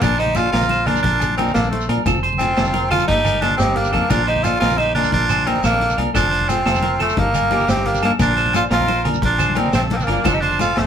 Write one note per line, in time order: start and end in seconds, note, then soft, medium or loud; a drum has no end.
0.00 0.50 A#1 loud
0.00 0.12 F3 medium
0.00 0.12 A#3 medium
0.00 0.20 D4 medium
0.00 0.13 D4 medium
0.00 0.12 F4 medium
0.00 0.22 F4 medium
0.00 0.18 A#4 medium
0.00 kick medium
0.00 closed hi-hat medium
0.00 muted conga medium
0.00 low conga medium
0.00 low agogo medium
0.00 shekere medium
0.19 0.38 D#4 medium
0.19 0.40 G4 medium
0.19 0.52 C5 medium
0.19 closed hi-hat soft
0.27 high conga medium
0.27 low conga medium
0.35 0.46 F3 medium
0.35 0.47 A#3 medium
0.35 0.47 D4 medium
0.35 0.51 F4 medium
0.35 0.48 F4 medium
0.35 0.54 A4 medium
0.35 closed hi-hat soft
0.35 muted conga medium
0.35 low agogo medium
0.35 shekere medium
0.52 1.01 A#1 medium
0.52 0.88 F4 medium
0.52 0.69 A#4 medium
0.52 0.89 A#4 medium
0.52 snare medium
0.52 closed hi-hat medium
0.52 low agogo medium
0.52 shekere soft
0.61 high conga medium
0.61 low conga medium
0.61 shekere medium
0.69 0.86 C5 medium
0.69 closed hi-hat soft
0.69 muted conga medium
0.86 0.97 F3 medium
0.86 0.97 A#3 medium
0.86 1.02 D4 medium
0.86 0.98 D4 medium
0.86 1.04 F4 medium
0.86 1.19 A#4 medium
0.86 closed hi-hat medium
0.86 low conga medium
0.86 low agogo medium
0.95 high conga medium
0.95 shekere medium
1.02 1.52 A#1 medium
1.02 1.35 D4 medium
1.02 1.36 F4 medium
1.02 kick medium
1.02 closed hi-hat medium
1.02 muted conga medium
1.20 closed hi-hat soft
1.20 low conga medium
1.20 low agogo medium
1.20 shekere medium
1.30 high conga medium
1.37 1.48 F3 medium
1.37 1.49 A#3 medium
1.37 1.53 C4 medium
1.37 1.49 D4 medium
1.37 1.54 D#4 medium
1.37 1.49 F4 medium
1.37 1.54 A#4 medium
1.37 closed hi-hat soft
1.37 muted conga medium
1.37 low agogo medium
1.48 low conga medium
1.48 shekere soft
1.54 1.87 A#1 medium
1.54 1.70 A#3 medium
1.54 1.70 D4 medium
1.54 1.88 A4 medium
1.54 snare medium
1.54 closed hi-hat medium
1.54 shekere medium
1.64 high conga medium
1.64 shekere soft
1.71 1.87 A3 medium
1.71 1.87 C4 medium
1.71 closed hi-hat soft
1.71 muted conga medium
1.81 shekere medium
1.87 1.97 A#2 medium
1.87 1.99 F3 medium
1.87 1.99 A#3 medium
1.87 1.99 D4 medium
1.87 2.00 F4 medium
1.87 2.05 A#4 medium
1.87 closed hi-hat medium
1.87 low conga soft
1.87 low agogo medium
1.98 high conga medium
1.98 low conga soft
2.04 2.53 F1 loud
2.04 2.16 A3 medium
2.04 2.16 C4 medium
2.04 2.17 F4 medium
2.04 2.23 A4 medium
2.04 kick medium
2.04 closed hi-hat medium
2.04 muted conga medium
2.04 low conga medium
2.04 low agogo medium
2.04 shekere medium
2.14 shekere soft
2.23 2.55 C5 medium
2.23 closed hi-hat soft
2.32 high conga medium
2.32 low conga medium
2.32 shekere soft
2.38 2.51 A3 medium
2.38 2.87 C4 medium
2.38 2.51 C4 medium
2.38 2.88 F4 medium
2.38 closed hi-hat soft
2.38 muted conga medium
2.38 low agogo medium
2.38 shekere medium
2.42 2.51 F4 medium
2.56 3.05 F1 medium
2.56 2.73 A4 medium
2.56 snare medium
2.56 closed hi-hat medium
2.56 low conga soft
2.56 low agogo medium
2.56 shekere soft
2.65 high conga medium
2.65 low conga medium
2.65 shekere medium
2.73 2.90 A#4 medium
2.73 closed hi-hat soft
2.73 muted conga medium
2.73 low conga soft
2.84 low conga soft
2.90 3.02 A3 medium
2.90 3.02 C4 medium
2.90 3.07 F4 medium
2.90 3.03 F4 medium
2.90 3.23 A4 medium
2.90 3.07 A4 medium
2.90 closed hi-hat soft
2.90 low conga medium
2.90 low agogo medium
2.90 shekere soft
2.99 high conga medium
2.99 low conga soft
2.99 shekere medium
3.08 3.56 G1 medium
3.08 3.18 F3 medium
3.08 3.19 A#3 medium
3.08 3.43 D#4 loud
3.08 3.19 D#4 medium
3.08 3.19 G4 medium
3.08 3.45 G4 medium
3.08 kick medium
3.08 closed hi-hat medium
3.08 muted conga medium
3.08 low conga soft
3.17 shekere soft
3.25 3.41 A#4 medium
3.25 closed hi-hat soft
3.25 low conga medium
3.25 low agogo medium
3.25 shekere medium
3.34 high conga medium
3.34 low conga soft
3.41 3.52 F3 medium
3.41 3.52 A#3 medium
3.41 3.57 D4 medium
3.41 3.59 F4 medium
3.41 3.54 G4 medium
3.41 3.58 A4 medium
3.41 muted steel-string acoustic guitar stroke medium
3.41 snare soft
3.41 closed hi-hat soft
3.41 muted conga medium
3.41 low agogo medium
3.50 low conga medium
3.57 3.91 G1 medium
3.57 3.77 C4 medium
3.57 3.79 D#4 medium
3.57 3.91 G4 medium
3.57 snare medium
3.57 closed hi-hat medium
3.57 shekere medium
3.68 high conga medium
3.68 low conga soft
3.76 3.92 A#3 medium
3.76 3.94 D4 medium
3.76 closed hi-hat medium
3.76 muted conga medium
3.76 low conga soft
3.84 low conga medium
3.84 shekere medium
3.92 4.01 F2 medium
3.92 4.03 F3 medium
3.92 4.03 A#3 medium
3.92 4.12 A#3 medium
3.92 4.14 D4 medium
3.92 4.04 D#4 medium
3.92 4.04 G4 medium
3.92 4.09 A4 medium
3.92 kick medium
3.92 closed hi-hat medium
3.92 low agogo medium
4.02 high conga medium
4.09 4.58 A#1 loud
4.09 4.20 F3 medium
4.09 4.20 A#3 medium
4.09 4.20 D4 medium
4.09 4.29 D4 loud
4.09 4.21 F4 medium
4.09 4.30 F4 medium
4.09 4.26 A#4 medium
4.09 kick medium
4.09 closed hi-hat medium
4.09 muted conga medium
4.09 low conga medium
4.09 low agogo medium
4.09 shekere medium
4.27 4.45 D#4 medium
4.27 4.46 G4 medium
4.27 4.60 C5 medium
4.27 closed hi-hat soft
4.36 high conga medium
4.36 low conga medium
4.44 4.54 F3 medium
4.44 4.55 A#3 medium
4.44 4.55 D4 medium
4.44 4.59 F4 medium
4.44 4.56 F4 medium
4.44 4.62 A4 medium
4.44 closed hi-hat soft
4.44 muted conga medium
4.44 low agogo medium
4.44 shekere medium
4.60 5.09 A#1 medium
4.60 4.79 F4 loud
4.60 4.77 A#4 medium
4.60 4.81 A#4 medium
4.60 snare medium
4.60 closed hi-hat medium
4.60 low agogo medium
4.60 shekere soft
4.70 high conga medium
4.70 low conga medium
4.70 shekere medium
4.78 4.94 D#4 medium
4.78 4.96 G4 medium
4.78 4.94 C5 medium
4.78 closed hi-hat soft
4.78 muted conga medium
4.95 5.06 A#3 medium
4.95 5.11 D4 medium
4.95 5.06 D4 medium
4.95 5.07 F4 medium
4.95 5.12 F4 medium
4.95 5.28 A#4 medium
4.95 closed hi-hat soft
4.95 low conga medium
4.95 low agogo medium
5.04 high conga medium
5.04 shekere medium
5.12 5.60 A#1 medium
5.12 5.49 D4 loud
5.12 5.49 F4 medium
5.12 kick medium
5.12 closed hi-hat medium
5.12 muted conga medium
5.29 5.46 C5 medium
5.29 closed hi-hat soft
5.29 low conga medium
5.29 low agogo medium
5.29 shekere loud
5.38 high conga medium
5.45 5.56 F3 medium
5.45 5.56 A#3 medium
5.45 5.64 C4 medium
5.45 5.57 D4 medium
5.45 5.64 D#4 medium
5.45 5.57 F4 medium
5.45 5.63 A#4 medium
5.45 closed hi-hat soft
5.45 muted conga medium
5.45 low agogo medium
5.55 low conga medium
5.55 shekere soft
5.63 5.95 A#1 medium
5.63 6.00 A#3 medium
5.63 6.00 D4 medium
5.63 5.96 A4 medium
5.63 snare medium
5.63 closed hi-hat medium
5.63 shekere loud
5.72 high conga medium
5.72 shekere soft
5.81 closed hi-hat medium
5.81 muted conga medium
5.89 low conga medium
5.89 shekere medium
5.95 6.06 C2 medium
5.95 6.07 F3 medium
5.95 6.07 A#3 medium
5.95 6.08 D4 medium
5.95 6.08 F4 medium
5.95 6.14 A#4 medium
5.95 closed hi-hat medium
5.95 low agogo medium
6.06 high conga medium
6.06 low conga soft
6.13 6.62 F1 loud
6.13 6.24 A3 medium
6.13 6.25 C4 medium
6.13 6.50 D4 loud
6.13 6.25 F4 medium
6.13 6.50 F4 medium
6.13 6.31 A4 medium
6.13 kick medium
6.13 closed hi-hat medium
6.13 muted conga medium
6.13 low conga medium
6.13 low agogo medium
6.13 shekere loud
6.31 6.64 C5 medium
6.31 closed hi-hat soft
6.41 high conga medium
6.41 low conga medium
6.49 6.59 A3 medium
6.49 7.00 C4 loud
6.49 6.60 C4 medium
6.49 7.01 F4 medium
6.49 6.60 F4 medium
6.49 closed hi-hat medium
6.49 muted conga medium
6.49 low agogo medium
6.49 shekere loud
6.65 7.13 F1 medium
6.65 6.82 A4 medium
6.65 snare medium
6.65 closed hi-hat medium
6.65 low agogo medium
6.65 shekere soft
6.75 high conga medium
6.75 low conga medium
6.75 shekere medium
6.82 6.99 A#4 medium
6.82 closed hi-hat soft
6.82 muted conga medium
6.99 7.10 A3 medium
6.99 7.20 A3 medium
6.99 7.11 C4 medium
6.99 7.20 C4 medium
6.99 7.11 F4 medium
6.99 7.32 A4 medium
6.99 closed hi-hat medium
6.99 low conga medium
6.99 low agogo medium
7.09 shekere medium
7.16 7.65 G1 medium
7.16 7.27 F3 medium
7.16 7.71 A#3 medium
7.16 7.28 D#4 medium
7.16 7.70 D#4 medium
7.16 7.28 G4 medium
7.16 muted steel-string acoustic guitar stroke medium
7.16 kick medium
7.16 closed hi-hat medium
7.16 muted conga medium
7.34 7.50 A#4 medium
7.34 closed hi-hat soft
7.34 low conga medium
7.34 low agogo medium
7.34 shekere loud
7.42 high conga medium
7.51 7.61 F3 medium
7.51 7.62 A#3 medium
7.51 7.62 D#4 medium
7.51 7.67 G4 medium
7.51 7.63 G4 medium
7.51 closed hi-hat soft
7.51 muted conga medium
7.51 low agogo medium
7.59 low conga medium
7.59 shekere soft
7.68 8.00 G1 medium
7.68 7.88 C4 medium
7.68 7.89 D#4 medium
7.68 8.01 G4 medium
7.68 snare medium
7.68 closed hi-hat medium
7.68 shekere loud
7.76 high conga medium
7.76 shekere soft
7.86 8.03 A#3 medium
7.86 8.04 D4 medium
7.86 closed hi-hat soft
7.86 muted conga medium
7.94 low conga medium
7.94 shekere medium
8.01 8.10 G2 medium
8.01 8.12 F3 medium
8.01 8.13 A#3 medium
8.01 8.12 A#3 medium
8.01 8.11 D4 medium
8.01 8.13 D#4 medium
8.01 8.14 G4 medium
8.01 8.19 A4 medium
8.01 closed hi-hat soft
8.01 low conga soft
8.01 low agogo medium
8.11 high conga medium
8.11 low conga soft
8.18 8.67 A#1 loud
8.18 8.29 F3 medium
8.18 8.30 A#3 medium
8.18 8.30 D4 medium
8.18 8.52 D4 loud
8.18 8.52 F4 medium
8.18 8.36 A#4 medium
8.18 muted steel-string acoustic guitar stroke medium
8.18 kick medium
8.18 closed hi-hat medium
8.18 muted conga medium
8.18 low conga medium
8.18 low agogo medium
8.18 shekere loud
8.37 8.69 C5 medium
8.37 closed hi-hat soft
8.46 high conga medium
8.46 low conga medium
8.53 8.64 F3 medium
8.53 8.64 A#3 medium
8.53 8.65 D4 medium
8.53 8.65 F4 medium
8.53 8.63 F4 medium
8.53 8.62 A4 medium
8.53 closed hi-hat soft
8.53 muted conga medium
8.53 low agogo medium
8.53 shekere loud
8.70 9.18 A#1 medium
8.70 9.03 F4 loud
8.70 8.87 A#4 medium
8.70 9.04 A#4 medium
8.70 snare medium
8.70 closed hi-hat medium
8.70 low agogo medium
8.70 shekere soft
8.80 high conga medium
8.80 low conga medium
8.88 9.04 C5 medium
8.88 closed hi-hat soft
8.88 muted conga medium
9.05 9.15 F3 medium
9.05 9.16 A#3 medium
9.05 9.17 D4 medium
9.05 9.17 F4 medium
9.05 9.37 A#4 medium
9.05 closed hi-hat soft
9.05 low conga medium
9.05 low agogo medium
9.14 high conga medium
9.14 shekere medium
9.22 9.70 A#1 medium
9.22 9.59 D4 loud
9.22 9.60 F4 medium
9.22 kick medium
9.22 closed hi-hat medium
9.22 muted conga medium
9.39 9.55 C5 medium
9.39 closed hi-hat medium
9.39 low conga medium
9.39 low agogo medium
9.39 shekere medium
9.49 high conga medium
9.55 9.67 F3 medium
9.55 9.67 A#3 medium
9.55 9.74 C4 medium
9.55 9.68 D4 medium
9.55 9.74 D#4 medium
9.55 9.68 F4 medium
9.55 9.73 A#4 medium
9.55 closed hi-hat medium
9.55 muted conga loud
9.55 low agogo medium
9.66 low conga medium
9.66 shekere soft
9.73 10.05 A#1 medium
9.73 9.82 C4 medium
9.73 9.82 F4 medium
9.73 10.06 A4 medium
9.73 snare medium
9.73 closed hi-hat medium
9.73 shekere medium
9.83 high conga medium
9.83 shekere soft
9.90 9.98 A#3 medium
9.90 9.97 D4 medium
9.90 closed hi-hat soft
9.90 muted conga loud
9.95 10.05 C4 medium
9.95 10.03 D#4 medium
10.00 10.10 A#3 medium
10.00 10.09 D4 medium
10.00 low conga medium
10.00 shekere medium
10.07 10.16 G1 medium
10.07 10.17 F3 medium
10.07 10.18 D4 medium
10.07 10.29 D4 medium
10.07 10.19 F4 medium
10.07 10.24 A#4 medium
10.07 closed hi-hat medium
10.07 low agogo medium
10.11 10.29 A#3 medium
10.17 high conga medium
10.17 low conga soft
10.24 10.72 F1 medium
10.24 10.35 C4 medium
10.24 10.35 D4 medium
10.24 10.35 F4 medium
10.24 10.41 A4 medium
10.24 muted steel-string acoustic guitar stroke medium
10.24 kick medium
10.24 closed hi-hat medium
10.24 muted conga loud
10.24 low conga loud
10.24 low agogo medium
10.24 shekere medium
10.33 10.42 D#4 medium
10.33 10.44 G4 medium
10.33 shekere soft
10.40 10.60 D4 medium
10.40 10.61 F4 medium
10.40 10.75 C5 medium
10.40 closed hi-hat soft
10.51 low conga medium
10.51 shekere soft
10.59 10.69 A3 medium
10.59 10.70 C4 medium
10.59 10.80 F4 medium
10.59 10.70 F4 medium
10.59 10.81 A4 medium
10.59 closed hi-hat soft
10.59 muted conga medium
10.59 low agogo medium
10.59 shekere medium
10.76 10.87 F1 medium
10.76 10.87 A3 medium
10.76 10.87 C4 medium
10.76 10.87 A4 medium
10.76 snare medium
10.76 closed hi-hat medium
10.76 low conga soft
10.76 low agogo medium